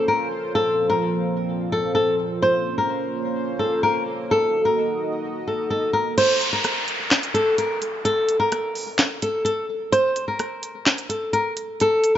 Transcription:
Already playing: analog synth pad A#3 C#4 F4 C5
0.08 nylon-string guitar A#4
0.55 analog synth pad A#2 F3 C4, nylon-string guitar A4
0.90 nylon-string guitar A#4
1.72 nylon-string guitar A4
1.95 nylon-string guitar A4
2.42 analog synth pad A#3 C#4 C5, nylon-string guitar C5
2.78 nylon-string guitar A#4
3.59 nylon-string guitar A4
3.83 nylon-string guitar A#4
4.30 analog synth pad D#4 F#4 D#5, nylon-string guitar A4
4.65 nylon-string guitar A#4
5.48 nylon-string guitar A4
5.70 nylon-string guitar A4
5.93 nylon-string guitar A#4
6.18 nylon-string guitar C5, closed hi-hat, crash, downlifter
6.41 closed hi-hat
6.53 nylon-string guitar A#4
6.64 cross-stick, closed hi-hat
6.88 closed hi-hat
7.11 snare, clap, closed hi-hat
7.23 closed hi-hat
7.34 nylon-string guitar A4, closed hi-hat
7.58 nylon-string guitar A#4, closed hi-hat
7.82 closed hi-hat
8.05 nylon-string guitar A4, closed hi-hat
8.29 closed hi-hat
8.40 nylon-string guitar A#4
8.52 cross-stick, closed hi-hat
8.75 open hi-hat
8.99 snare, clap, closed hi-hat
9.22 nylon-string guitar A4, closed hi-hat
9.45 nylon-string guitar A4, closed hi-hat
9.92 nylon-string guitar C5, closed hi-hat
10.16 closed hi-hat
10.28 nylon-string guitar A#4
10.39 cross-stick, closed hi-hat
10.63 closed hi-hat
10.86 snare, clap, closed hi-hat
10.98 closed hi-hat
11.09 nylon-string guitar A4, closed hi-hat
11.33 nylon-string guitar A#4, closed hi-hat
11.57 closed hi-hat
11.80 nylon-string guitar A4, closed hi-hat
12.04 closed hi-hat

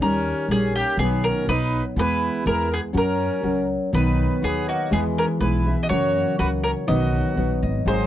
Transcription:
0.00 upright bass D#2, nylon-string guitar D#3 G3 C#4 D#4 A#4, trumpet C#4, mandolin A#4
0.49 upright bass A#1, nylon-string guitar G3 C#4 D#4 A#4, mandolin G#4
0.54 trumpet C#4
0.76 trumpet A#3, mandolin G4
0.97 upright bass B1, nylon-string guitar B2 D#3 F#3 B3 D#4 B4, mandolin G#4
1.03 trumpet B3
1.24 trumpet C#4, mandolin A#4
1.46 upright bass B1, nylon-string guitar F#3 B3 D#4 B4, trumpet D#4, mandolin B4
1.96 upright bass E2, nylon-string guitar E3 G#3 B3 E4 G#4, trumpet E4, mandolin B4
2.45 upright bass E2, nylon-string guitar G#3 B3 E4 G#4, trumpet E4, mandolin A#4
2.72 trumpet B3, mandolin G#4
2.93 upright bass F#2, nylon-string guitar F#3 C#4 F#4 A#4, trumpet C#4
2.97 mandolin A#4
3.42 upright bass C#2, nylon-string guitar F#3 C#4 F#4 A#4
3.93 upright bass B1, nylon-string guitar B2 D#3 F#3 B3 D#4 B4, harp D#3, trumpet D#4, mandolin B4
4.18 harp B3
4.42 upright bass D#2, nylon-string guitar F#3 B3 D#4 B4, trumpet B3, harp F#4, mandolin G#4
4.68 trumpet A#3, mandolin F#4, harp D#5
4.91 upright bass E2, nylon-string guitar E3 G#3 B3 E4 G#4, harp E3, trumpet B3, mandolin G#4
5.17 harp B3, trumpet C#4, mandolin A#4
5.40 upright bass B1, nylon-string guitar G#3 B3 E4 G#4, trumpet E4, harp G#4, mandolin B4
5.66 nylon-string guitar B3 E4 G#4, harp E5
5.82 trumpet F#4, mandolin D#5
5.89 upright bass F#2, harp C#3, nylon-string guitar F#3 C#4 F#4 A#4, trumpet F#4, mandolin C#5
6.15 harp A#3
6.38 upright bass C#2, nylon-string guitar F#3 C#4 F#4 A#4, trumpet F#4, harp F#4, mandolin B4
6.64 trumpet C#4, mandolin A#4, harp C#5
6.87 upright bass B1, nylon-string guitar B2 D#3 F#3 B3 D#4 B4, harp D#3, trumpet F#4, mandolin D#5
7.13 harp B3
7.35 upright bass A#1, nylon-string guitar F#3 B3 D#4 B4, harp F#4
7.62 upright bass G#1, harp D#5
7.86 upright bass G#1, nylon-string guitar G#2 D#3 F#3 C4 F#4 G#4, harp F#3, trumpet D#4, mandolin C5

